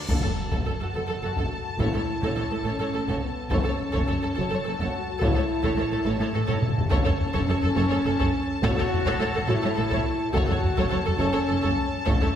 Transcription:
0.08 double bass section F#1, timpani F#2, cello section F#2, french horn section F#4, violin section A4 A5, viola section A4, taiko, impact
0.23 cello section F#2, violin section A4, viola section A4
0.51 cello section F#2, viola section A4, violin section A4, taiko
0.65 double bass section F#1, cello section F#2, viola section A4, violin section A4
0.81 cello section F#2, violin section F#4, viola section A4
0.94 double bass section F#1, cello section F#2, viola section A4, violin section A4
1.08 cello section F#2, violin section A4, viola section A4
1.22 double bass section F#1, cello section F#2, violin section F#4, viola section A4
1.37 cello section F#2, viola section A4, violin section A4, taiko
1.79 double bass section A1, cello section A2, french horn section E4, viola section A4, violin section C#5, taiko
1.94 cello section A2, viola section A4, violin section C#5
2.22 cello section A2, viola section A4, violin section C#5, taiko
2.36 double bass section A1, cello section A2, viola section A4, violin section C#5
2.51 cello section A2, viola section A4, violin section A4
2.64 double bass section A1, cello section A2, french horn section C#4, viola section A4, violin section C#5
2.80 cello section A2, viola section A4, violin section C#5
2.94 double bass section A1, cello section A2, viola section A4, violin section A4
3.08 cello section A2, viola section A4, violin section C#5, taiko
3.23 french horn section B3
3.50 double bass section F#1, cello section F#2, french horn section C#4, viola section A4, violin section C#5 A5, taiko
3.64 cello section F#2, viola section A4, violin section C#5
3.92 cello section F#2, viola section A4, violin section C#5, taiko
4.08 double bass section F#1, cello section F#2, viola section A4, violin section C#5
4.23 cello section F#2, viola section A4, violin section A4
4.35 double bass section F#1, cello section F#2, french horn section F#4, viola section A4, violin section C#5
4.50 cello section F#2, viola section A4, violin section C#5
4.64 double bass section F#1, cello section F#2, viola section A4, violin section A4
4.79 cello section F#2, viola section A4, violin section C#5, taiko
5.21 double bass section A1, cello section A2, french horn section E4, viola section A4, violin section C#5, taiko
5.35 cello section A2, viola section A4, violin section C#5
5.63 cello section A2, viola section A4, violin section C#5, taiko
5.77 double bass section A1, cello section A2, viola section A4, violin section C#5
5.92 cello section A2, viola section A4, violin section A4
6.05 double bass section A1, cello section A2, french horn section A3, viola section A4, violin section C#5
6.20 cello section A2, viola section A4, violin section C#5
6.34 double bass section A1, cello section A2, violin section A4, viola section A4
6.47 cello section A2, viola section A4, violin section C#5, taiko low-mid
6.62 taiko low-mid
6.77 taiko low
6.90 double bass section F#1, cello section F#2, french horn section C#4, viola section A4, violin section C#5 A5, taiko
7.04 cello section F#2, viola section A4, violin section C#5, taiko low
7.20 taiko low
7.32 cello section F#2, viola section A4, violin section C#5, taiko
7.48 double bass section F#1, cello section F#2, viola section A4, violin section C#5
7.63 cello section F#2, viola section A4, violin section A4, taiko low
7.75 double bass section F#1, cello section F#2, viola section A4, violin section C#5
7.89 cello section F#2, viola section A4, violin section C#5
8.04 double bass section F#1, cello section F#2, violin section A4, viola section A4
8.19 cello section F#2, viola section A4, violin section C#5, taiko
8.63 double bass section A1, cello section A2, french horn section F#4, viola section A4, violin section C#5, taiko
8.77 cello section A2, viola section A4, violin section C#5, taiko low
8.92 taiko low
9.06 cello section A2, viola section A4, violin section C#5, taiko
9.20 double bass section A1, cello section A2, viola section A4, violin section C#5
9.35 cello section A2, violin section A4, viola section A4, taiko low
9.48 double bass section A1, cello section A2, french horn section E4, viola section A4, violin section C#5
9.63 cello section A2, viola section A4, violin section C#5
9.77 double bass section A1, cello section A2, viola section A4, violin section A4
9.90 cello section A2, viola section A4, violin section C#5, taiko
10.32 double bass section F#1, cello section F#2, french horn section F#4, viola section A4, violin section C#5 A5, taiko
10.47 cello section F#2, viola section A4, violin section C#5, taiko low
10.64 taiko low
10.77 cello section F#2, viola section A4, violin section C#5, taiko
10.90 double bass section F#1, cello section F#2, viola section A4, violin section C#5
11.06 cello section F#2, viola section A4, violin section A4, taiko low
11.18 double bass section F#1, cello section F#2, french horn section C#4, viola section A4, violin section C#5
11.33 cello section F#2, viola section A4, violin section C#5
11.48 double bass section F#1, cello section F#2, violin section A4, viola section A4
11.61 cello section F#2, viola section A4, violin section C#5, taiko
12.05 double bass section A1, cello section A2, french horn section C#4, viola section A4, violin section C#5, taiko
12.21 cello section A2, viola section A4, violin section C#5, taiko low

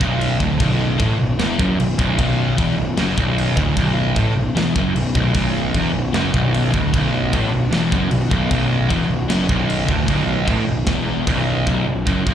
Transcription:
0.00 picked electric bass B0, distorted electric guitar B1, kick
0.21 crash
0.40 picked electric bass D1, distorted electric guitar D2, kick
0.59 picked electric bass B0, distorted electric guitar B1, kick, crash
0.99 picked electric bass A1, distorted electric guitar A2, kick, crash
1.18 picked electric bass B0, distorted electric guitar B1
1.38 picked electric bass E1, distorted electric guitar E2, snare, crash
1.59 picked electric bass F#1, distorted electric guitar F#2, kick
1.76 picked electric bass B0, crash
1.80 distorted electric guitar B1
1.98 picked electric bass B0, distorted electric guitar B1, kick
2.18 picked electric bass B0, distorted electric guitar B1, kick, crash
2.58 picked electric bass E1, distorted electric guitar E2, kick, crash
2.76 picked electric bass B0, distorted electric guitar B1
2.97 picked electric bass F#1, distorted electric guitar F#2, snare, crash
3.16 picked electric bass B0, distorted electric guitar B1, kick
3.38 crash
3.57 picked electric bass D1, distorted electric guitar D2, kick
3.77 picked electric bass B0, distorted electric guitar B1, kick, crash
4.15 picked electric bass A1, distorted electric guitar A2, kick, crash
4.35 picked electric bass B0, distorted electric guitar B1
4.55 picked electric bass E1, distorted electric guitar E2, snare, crash
4.75 picked electric bass F#1, distorted electric guitar F#2, kick
4.95 picked electric bass B0, distorted electric guitar B1, crash
5.15 picked electric bass B0, distorted electric guitar B1, kick
5.34 picked electric bass B0, distorted electric guitar B1, analog synth pad B3 D4 F#4, kick, crash
5.74 picked electric bass E1, distorted electric guitar E2, kick, crash
5.94 picked electric bass B0, distorted electric guitar B1
6.13 picked electric bass F#1, distorted electric guitar F#2, snare, crash
6.33 picked electric bass B0, distorted electric guitar B1, kick
6.54 crash
6.72 picked electric bass D1, distorted electric guitar D2, kick
6.93 picked electric bass B0, distorted electric guitar B1, kick, crash
7.32 picked electric bass A1, distorted electric guitar A2, kick, crash
7.51 picked electric bass B0, distorted electric guitar B1
7.71 picked electric bass E1, distorted electric guitar E2, snare, crash
7.92 picked electric bass F#1, distorted electric guitar F#2, kick
8.10 picked electric bass B0, distorted electric guitar B1, crash
8.29 picked electric bass B0, distorted electric guitar B1, kick
8.51 picked electric bass B0, distorted electric guitar B1, kick, crash
8.90 picked electric bass E1, distorted electric guitar E2, kick, crash
9.08 picked electric bass B0, distorted electric guitar B1
9.28 picked electric bass F#1, distorted electric guitar F#2, snare, crash
9.49 picked electric bass B0, distorted electric guitar B1, kick
9.70 crash
9.86 picked electric bass D1, distorted electric guitar D2, kick
10.06 picked electric bass B0, distorted electric guitar B1, kick, crash
10.47 picked electric bass A1, distorted electric guitar A2, kick, crash
10.66 picked electric bass B0, distorted electric guitar B1
10.86 picked electric bass E1, distorted electric guitar E2, kick, snare, crash
11.27 picked electric bass B0, distorted electric guitar B1, kick, crash
11.67 picked electric bass B0, distorted electric guitar B1, kick, china
11.88 picked electric bass B0, distorted electric guitar B1
12.07 picked electric bass F#1, distorted electric guitar F#2, kick, china
12.26 picked electric bass B0, distorted electric guitar B1, kick

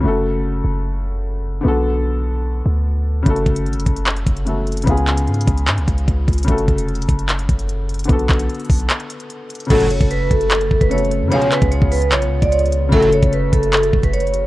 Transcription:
0.00 808-style bass F#1, grand piano C#3 A3
0.05 grand piano F#4 A4
0.64 808-style bass F#1
1.61 808-style bass B1, grand piano D3 B3
1.66 grand piano F#4 A4
2.66 808-style bass D2
3.23 808-style bass F#1, grand piano C#3 A3, kick, closed hi-hat
3.27 grand piano F#4 A4
3.36 closed hi-hat
3.46 808-style bass F#1, kick, closed hi-hat
3.56 closed hi-hat
3.66 808-style bass G#1, closed hi-hat
3.73 808-style bass F#1, closed hi-hat
3.80 closed hi-hat
3.86 808-style bass F#1, kick, closed hi-hat
3.97 closed hi-hat
4.07 clap, closed hi-hat
4.17 closed hi-hat
4.27 808-style bass F#1, kick, closed hi-hat
4.37 closed hi-hat
4.45 grand piano C#3 A3 F#4 A4, closed hi-hat
4.67 closed hi-hat
4.72 closed hi-hat
4.77 closed hi-hat
4.82 grand piano C#3 B3, closed hi-hat
4.87 808-style bass C#2, grand piano F4 G#4, kick, closed hi-hat
4.97 closed hi-hat
5.07 clap, closed hi-hat
5.17 closed hi-hat
5.27 808-style bass G#2, closed hi-hat
5.34 closed hi-hat
5.41 closed hi-hat
5.48 808-style bass C#2, kick, closed hi-hat
5.58 closed hi-hat
5.68 808-style bass G#2, clap, closed hi-hat
5.78 808-style bass C#2, closed hi-hat
5.88 808-style bass C#2, kick, closed hi-hat
5.98 closed hi-hat
6.08 808-style bass C#2, kick, closed hi-hat
6.28 808-style bass C#2, kick, closed hi-hat
6.33 closed hi-hat
6.38 closed hi-hat
6.43 grand piano C#3 A3, closed hi-hat
6.48 808-style bass F#1, grand piano F#4 A4, kick, closed hi-hat
6.58 closed hi-hat
6.68 808-style bass F1, kick, closed hi-hat
6.78 closed hi-hat
6.89 closed hi-hat
6.95 closed hi-hat
7.02 closed hi-hat
7.09 808-style bass F#1, kick, closed hi-hat
7.19 closed hi-hat
7.29 clap, closed hi-hat
7.39 closed hi-hat
7.49 808-style bass F#1, kick, closed hi-hat
7.59 closed hi-hat
7.69 closed hi-hat
7.89 closed hi-hat
7.94 closed hi-hat
7.99 closed hi-hat
8.04 grand piano D3 B3, closed hi-hat
8.09 808-style bass B1, grand piano F#4 A4, kick, closed hi-hat
8.19 closed hi-hat
8.30 808-style bass B1, kick, clap, closed hi-hat
8.40 closed hi-hat
8.50 closed hi-hat
8.55 closed hi-hat
8.60 closed hi-hat
8.65 closed hi-hat
8.70 808-style bass B1, kick, open hi-hat
8.80 closed hi-hat
8.90 clap, closed hi-hat
9.00 closed hi-hat
9.10 closed hi-hat
9.20 closed hi-hat
9.30 closed hi-hat
9.50 closed hi-hat
9.55 closed hi-hat
9.60 closed hi-hat
9.65 grand piano C#3 A3, closed hi-hat
9.70 808-style bass F#1, analog polysynth C#2 A2 F#3, ambient pad C#3 A3 F#4, grand piano F#4 A4, vibraphone A4, kick, closed hi-hat, crash
9.80 closed hi-hat
9.91 vibraphone C#5, closed hi-hat
10.01 808-style bass F#1, kick, closed hi-hat
10.11 vibraphone B4, closed hi-hat
10.31 808-style bass F#1, vibraphone A4, kick, closed hi-hat
10.41 closed hi-hat
10.51 vibraphone A4, clap, closed hi-hat
10.61 closed hi-hat
10.71 808-style bass F#1, kick
10.81 808-style bass F#1, vibraphone B4, kick, closed hi-hat
10.89 grand piano C#3 A3 F#4 A4, vibraphone C#5, closed hi-hat
10.98 closed hi-hat
11.05 closed hi-hat
11.11 closed hi-hat
11.21 808-style bass F#2
11.28 analog polysynth C#2 B2 F3, grand piano C#3 B3, ambient pad B3 F4, vibraphone C#5, closed hi-hat
11.32 grand piano F4 G#4
11.41 closed hi-hat
11.51 vibraphone B4, clap, closed hi-hat
11.62 808-style bass C#2, kick, closed hi-hat
11.71 vibraphone C#5, closed hi-hat
11.82 808-style bass C#2, kick
11.92 vibraphone B4, open hi-hat
12.02 closed hi-hat
12.12 808-style bass B1, vibraphone C#5, clap, closed hi-hat
12.22 closed hi-hat
12.27 808-style bass C#2
12.42 808-style bass C#2, vibraphone D5, kick, closed hi-hat
12.52 vibraphone C#5, closed hi-hat
12.59 closed hi-hat
12.66 closed hi-hat
12.72 closed hi-hat
12.89 808-style bass F#1, analog polysynth C#2 A2 F#3, grand piano C#3 A3, ambient pad A3 F#4, vibraphone A4, kick, closed hi-hat
12.94 grand piano F#4 A4
13.03 closed hi-hat
13.13 vibraphone C#5, closed hi-hat
13.23 808-style bass F#1, kick, closed hi-hat
13.33 vibraphone B4, closed hi-hat
13.53 808-style bass F#1, vibraphone A4, kick, closed hi-hat
13.63 closed hi-hat
13.73 vibraphone A4, clap, closed hi-hat
13.83 closed hi-hat
13.93 808-style bass F#1, kick
14.03 vibraphone B4, kick, closed hi-hat
14.13 vibraphone C#5, closed hi-hat
14.20 closed hi-hat
14.27 closed hi-hat
14.33 closed hi-hat

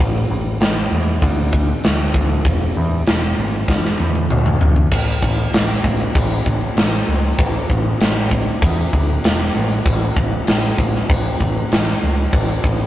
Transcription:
0.00 picked electric bass A1
0.30 picked electric bass A1
0.60 picked electric bass A1, snare, open hi-hat
0.91 picked electric bass E2
1.22 picked electric bass D2, kick, open hi-hat
1.53 kick
1.84 picked electric bass D2, snare, open hi-hat
2.14 picked electric bass D2, kick
2.45 picked electric bass E1, kick, open hi-hat
2.77 picked electric bass E2
3.06 picked electric bass E1, snare, open hi-hat
3.38 picked electric bass G#1
3.68 picked electric bass F#1, kick, snare
3.85 snare
4.00 picked electric bass E2, high tom
4.15 high tom
4.30 picked electric bass D2, mid tom
4.46 mid tom
4.61 picked electric bass D2, floor tom
4.76 floor tom
4.91 picked electric bass A1, kick, crash
5.22 picked electric bass A1, kick
5.53 picked electric bass A1, snare, crash
5.84 picked electric bass A1, kick
6.15 picked electric bass A1, kick, crash
6.46 picked electric bass A1, kick
6.77 picked electric bass A1, snare, crash
7.08 picked electric bass C#2
7.39 picked electric bass A1, kick, crash
7.70 picked electric bass A1, kick
8.00 picked electric bass A1, snare, crash
8.31 kick
8.62 picked electric bass E2, kick, crash
8.93 picked electric bass D2, kick
9.24 picked electric bass E1, snare, crash
9.56 picked electric bass A1
9.85 picked electric bass A1, kick, crash
10.17 picked electric bass A1, kick
10.47 picked electric bass A1, snare, crash
10.78 picked electric bass A1, kick
10.95 snare
11.10 picked electric bass A1, kick, crash
11.40 picked electric bass A1, kick
11.72 picked electric bass A1, snare, crash
12.03 picked electric bass C#2
12.33 picked electric bass A1, kick, crash
12.64 picked electric bass A1, kick

